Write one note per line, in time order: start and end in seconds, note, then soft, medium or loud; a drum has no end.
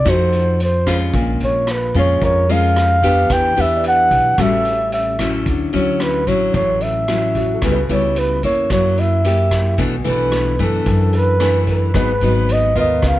0.00 0.11 D5 loud
0.05 1.10 F2 loud
0.05 1.11 F3 soft
0.05 0.59 A3 medium
0.05 0.59 D#4 medium
0.05 0.60 F#4 medium
0.05 kick medium
0.05 cross-stick medium
0.05 closed hi-hat soft
0.05 shaker medium
0.09 0.62 C5 medium
0.33 closed hi-hat soft
0.33 shaker soft
0.60 closed hi-hat soft
0.60 shaker medium
0.64 1.00 C5 medium
0.86 1.63 G#3 medium
0.86 1.63 C#4 medium
0.86 1.64 F4 medium
0.86 kick soft
0.86 cross-stick medium
0.86 closed hi-hat soft
0.86 shaker soft
1.14 1.39 A#1 medium
1.14 2.19 A#2 medium
1.14 kick medium
1.14 closed hi-hat soft
1.14 shaker medium
1.40 1.91 A#1 medium
1.40 1.73 C#5 medium
1.40 closed hi-hat soft
1.40 shaker soft
1.67 cross-stick medium
1.67 closed hi-hat soft
1.67 shaker medium
1.71 1.97 B4 medium
1.94 2.20 F2 medium
1.94 2.45 G#3 medium
1.94 2.45 C#4 medium
1.94 2.45 F4 medium
1.94 kick soft
1.94 closed hi-hat soft
1.94 shaker soft
1.99 2.22 C#5 medium
2.22 3.26 F2 loud
2.22 3.27 F2 medium
2.22 2.82 A#4 soft
2.22 2.53 C#5 medium
2.22 kick medium
2.22 closed hi-hat soft
2.22 shaker medium
2.49 2.99 G#3 medium
2.49 2.99 C#4 medium
2.49 2.99 F4 medium
2.49 3.34 F5 medium
2.49 closed hi-hat soft
2.49 shaker soft
2.76 cross-stick medium
2.76 closed hi-hat soft
2.76 shaker medium
3.03 3.53 B3 medium
3.03 3.53 D4 medium
3.03 3.53 G4 medium
3.03 kick soft
3.03 closed hi-hat soft
3.03 shaker soft
3.30 3.55 E2 medium
3.30 4.36 E3 medium
3.30 3.62 G5 loud
3.30 kick medium
3.30 cross-stick medium
3.30 closed hi-hat soft
3.30 shaker medium
3.57 4.08 E2 medium
3.57 4.34 B3 medium
3.57 4.34 D4 medium
3.57 4.34 G4 medium
3.57 4.17 B4 soft
3.57 closed hi-hat soft
3.57 shaker soft
3.61 3.86 E5 medium
3.77 4.33 D5 soft
3.84 closed hi-hat soft
3.84 shaker medium
3.88 4.43 F#5 loud
3.95 4.49 E5 soft
4.11 4.36 B1 medium
4.11 kick soft
4.11 closed hi-hat soft
4.11 shaker soft
4.38 5.42 A1 loud
4.38 5.44 A2 soft
4.38 5.15 G3 medium
4.38 5.15 C#4 medium
4.38 5.16 F#4 medium
4.38 4.98 A4 medium
4.38 4.93 E5 medium
4.38 kick medium
4.38 cross-stick medium
4.38 closed hi-hat soft
4.38 shaker medium
4.65 closed hi-hat soft
4.65 shaker soft
4.92 5.31 E5 medium
4.92 closed hi-hat soft
4.92 shaker medium
5.19 5.72 F#3 medium
5.19 5.72 C#4 soft
5.19 5.72 E4 medium
5.19 kick soft
5.19 cross-stick medium
5.19 closed hi-hat soft
5.19 shaker soft
5.46 5.71 D2 medium
5.46 6.52 D3 medium
5.46 kick medium
5.46 closed hi-hat soft
5.46 shaker medium
5.73 6.24 D2 medium
5.73 6.23 F#3 medium
5.73 6.23 C#4 medium
5.73 6.23 E4 medium
5.73 6.03 C#5 medium
5.73 closed hi-hat soft
5.73 shaker soft
6.00 6.30 B4 medium
6.00 cross-stick medium
6.00 closed hi-hat soft
6.00 shaker medium
6.27 6.52 A1 medium
6.27 7.04 F#3 medium
6.27 7.04 C#4 soft
6.27 7.05 E4 medium
6.27 6.55 C#5 medium
6.27 kick soft
6.27 closed hi-hat soft
6.27 shaker soft
6.54 7.58 A1 medium
6.54 7.60 A2 medium
6.54 6.84 C#5 medium
6.54 kick medium
6.54 closed hi-hat soft
6.54 shaker medium
6.81 7.63 E5 medium
6.81 closed hi-hat soft
6.81 shaker soft
7.08 7.60 F#3 medium
7.08 7.60 C#4 medium
7.08 7.61 E4 medium
7.08 cross-stick medium
7.08 closed hi-hat soft
7.08 shaker medium
7.35 7.86 F#4 soft
7.35 kick soft
7.35 closed hi-hat soft
7.35 shaker soft
7.54 8.02 A4 soft
7.62 7.87 C#2 medium
7.62 8.68 C#3 medium
7.62 7.79 G3 medium
7.62 7.79 B3 medium
7.62 7.79 E4 soft
7.62 kick medium
7.62 cross-stick medium
7.62 closed hi-hat soft
7.62 shaker medium
7.72 8.18 B4 soft
7.89 8.40 C#2 medium
7.89 8.39 G3 medium
7.89 8.39 B3 medium
7.89 8.40 E4 medium
7.89 8.20 C#5 medium
7.89 closed hi-hat soft
7.89 shaker soft
8.16 8.45 B4 medium
8.16 closed hi-hat soft
8.16 shaker medium
8.43 8.68 E2 medium
8.43 9.21 A#3 medium
8.43 9.21 E4 medium
8.43 8.70 C#5 medium
8.43 kick soft
8.43 closed hi-hat soft
8.43 shaker soft
8.70 9.75 F#2 loud
8.70 9.76 F#3 medium
8.70 9.01 C#5 medium
8.70 kick medium
8.70 cross-stick medium
8.70 closed hi-hat soft
8.70 shaker medium
8.97 9.58 E4 soft
8.97 9.80 E5 medium
8.97 closed hi-hat soft
8.97 shaker soft
9.24 9.77 A#3 soft
9.24 9.77 E4 medium
9.24 9.77 G4 medium
9.24 closed hi-hat soft
9.24 shaker medium
9.51 kick soft
9.51 cross-stick medium
9.51 closed hi-hat soft
9.51 shaker soft
9.78 10.04 B1 medium
9.78 10.84 B2 medium
9.78 9.95 E3 medium
9.78 9.95 A3 medium
9.78 9.95 D4 medium
9.78 kick medium
9.78 closed hi-hat soft
9.78 shaker medium
10.04 10.57 B1 medium
10.04 10.55 E3 medium
10.04 10.55 A3 medium
10.04 10.55 D4 medium
10.04 10.65 B4 medium
10.04 closed hi-hat soft
10.04 shaker soft
10.32 cross-stick medium
10.32 closed hi-hat soft
10.32 shaker medium
10.59 10.85 F#2 medium
10.59 11.37 E3 medium
10.59 11.37 A3 medium
10.59 11.37 D4 medium
10.59 kick soft
10.59 closed hi-hat soft
10.59 shaker soft
10.63 11.16 A4 medium
10.86 11.91 F#2 loud
10.86 11.92 F#2 medium
10.86 kick medium
10.86 closed hi-hat soft
10.86 shaker medium
11.13 11.74 A4 soft
11.13 closed hi-hat soft
11.13 shaker soft
11.17 11.66 B4 medium
11.40 11.93 E3 medium
11.40 11.93 A3 medium
11.40 11.93 D4 medium
11.40 cross-stick medium
11.40 closed hi-hat soft
11.40 shaker medium
11.67 kick soft
11.67 closed hi-hat soft
11.67 shaker soft
11.72 12.54 B4 medium
11.94 12.20 G#1 medium
11.94 13.01 G#2 medium
11.94 12.11 F#3 medium
11.94 12.11 B3 medium
11.94 12.11 D#4 medium
11.94 12.55 B4 medium
11.94 kick medium
11.94 cross-stick medium
11.94 closed hi-hat soft
11.94 shaker medium
12.21 12.72 G#1 medium
12.21 12.72 F#3 medium
12.21 12.72 B3 soft
12.21 12.72 D#4 medium
12.21 closed hi-hat soft
12.21 shaker soft
12.49 12.78 D#5 loud
12.49 closed hi-hat soft
12.49 shaker medium
12.75 13.01 D#2 medium
12.75 13.19 B3 medium
12.75 13.19 F4 soft
12.75 13.19 F4 medium
12.75 13.19 A#4 medium
12.75 kick soft
12.75 closed hi-hat soft
12.75 shaker soft
12.80 13.03 D#5 medium
13.02 13.19 C#2 loud
13.02 13.19 C#3 medium
13.02 kick soft
13.02 cross-stick medium
13.02 closed hi-hat soft
13.02 shaker medium
13.08 13.19 F5 medium